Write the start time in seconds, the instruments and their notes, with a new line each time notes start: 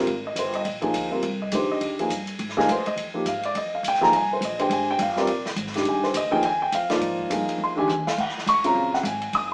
0.06 upright bass G#1, ride
0.27 grand piano D#5
0.34 upright bass G1, grand piano B4, hi-hat pedal, ride
0.39 grand piano C5
0.53 grand piano D#5, ride
0.65 upright bass A#1, ride
0.81 grand piano F3 A#3 D#4 G#4, kick, ride
0.93 upright bass D2, hi-hat pedal, ride
1.11 grand piano G3 C4 F4 A#4
1.23 upright bass C2, ride
1.42 grand piano D#5
1.52 upright bass F2, grand piano D#3 G#3 D4 G4 C5, hi-hat pedal, ride
1.70 grand piano D#5, muted upright bass stroke
1.81 upright bass D#2, ride
1.99 grand piano F3 A#3 D#4 G#4, ride
2.10 upright bass G2, hi-hat pedal, ride
2.27 ride
2.39 upright bass G#2, ride
2.49 snare
2.57 grand piano F3 A#3 D#4 G#4 D#5, snare
2.68 upright bass A#2, grand piano C5, hi-hat pedal, ride
2.77 upright bass G#2
2.86 upright bass F2, grand piano D#5, ride
2.96 upright bass F2, ride
3.14 grand piano F3 A#3 D#4 G4
3.26 upright bass G#2, grand piano F5, hi-hat pedal, ride
3.43 grand piano D5, ride
3.55 upright bass F2, grand piano D#5, ride
3.75 grand piano F5
3.83 upright bass D2, hi-hat pedal, ride
3.88 grand piano G5
3.94 snare
4.01 grand piano F3 A#3 D#4 G#4 A#5, snare
4.12 upright bass C2, ride
4.16 grand piano G#5
4.33 grand piano C5
4.41 upright bass A#1, hi-hat pedal, ride
4.45 grand piano D#5
4.59 grand piano G#3 D4 G4 C5 G5, ride
4.70 upright bass G#1, grand piano G#5, ride
4.91 grand piano G5
4.99 upright bass G1, grand piano F5, hi-hat pedal, ride
5.16 grand piano G3 C4 F4 A#4 D5, snare
5.27 upright bass A#1, ride
5.46 snare
5.56 upright bass G#1, hi-hat pedal, ride
5.67 snare
5.74 grand piano D#3 G#3 D4 G4, snare, ride
5.85 upright bass C2, grand piano G#5, ride
6.03 grand piano C5, snare
6.14 upright bass D2, grand piano D#5, hi-hat pedal, ride
6.31 grand piano F3 A#3 D#4 G#4 G5
6.43 upright bass D#2, grand piano G#5, ride
6.62 grand piano G5
6.72 upright bass F2, grand piano F5, hi-hat pedal, ride
6.90 grand piano F3 A#3 D#4 F4 D5, snare, ride
7.01 upright bass G#2, ride
7.19 kick
7.30 upright bass G2, grand piano F3 A#3 D#4 G#4, hi-hat pedal, ride
7.48 muted upright bass stroke, ride
7.58 upright bass F2
7.64 grand piano C6
7.76 grand piano D#3 G#3 D4 G4 G#5, mid tom
7.88 upright bass D#2, hi-hat pedal, mid tom
8.07 grand piano F5, snare
8.17 upright bass D#2, grand piano F#5, kick, crash
8.29 snare
8.38 snare
8.46 upright bass C#2, grand piano C#6, hi-hat pedal, ride
8.64 grand piano C#3 F#3 C4 F4 A#5, ride
8.75 upright bass A#1
8.94 grand piano F#5, snare
9.03 upright bass G#1, grand piano G#5, hi-hat pedal, ride
9.22 ride
9.33 upright bass F#1, grand piano D#6, ride